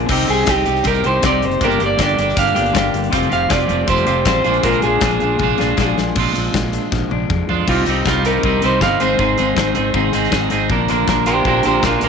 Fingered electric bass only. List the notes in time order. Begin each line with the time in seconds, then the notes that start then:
0.09 C2
0.29 C2
0.47 C2
0.67 C2
0.85 C2
1.06 C2
1.23 C2
1.43 F#1
1.61 G1
1.81 G1
1.99 G1
2.19 G1
2.37 G1
2.57 G1
2.75 G1
2.94 G1
3.13 F1
3.32 F1
3.51 F1
3.69 F1
3.88 F1
4.07 F1
4.26 A1
4.46 A#1
4.64 A#1
4.84 A#1
5.01 A#1
5.22 A#1
5.40 A#1
5.60 A#1
5.78 A#1
5.98 A#1
6.16 A#1
6.36 A#1
6.55 A#1
6.92 A#1
7.12 A#1
7.30 F2
7.50 F2
7.68 C2
7.87 C2
8.06 C2
8.44 C2
8.63 C2
8.81 G1
9.01 G#1
9.19 G#1
9.39 G#1
9.57 G#1
9.77 G#1
9.94 G#1
10.14 G#1
10.32 G#1
10.52 G#1
10.70 A#1
10.91 A#1
11.08 A#1
11.45 A#1
11.65 A#1
11.83 A#1
12.02 A#1